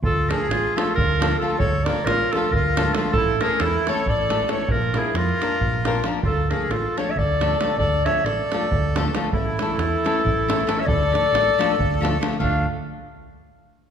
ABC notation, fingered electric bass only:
X:1
M:7/8
L:1/8
Q:1/4=136
K:none
V:1 name="Fingered electric bass" clef=bass
D,,2 A,,, z D,,3 | D,,2 A,,, z D,,3 | A,,,2 E,, z A,,,3 | _B,,,2 F,, z B,,,3 |
D,,2 A,,, z D,,3 | D,,2 A,,, z D,,3 | A,,,2 E,, z A,,,3 | D,,2 A,,, z D,,3 |
D,, z6 |]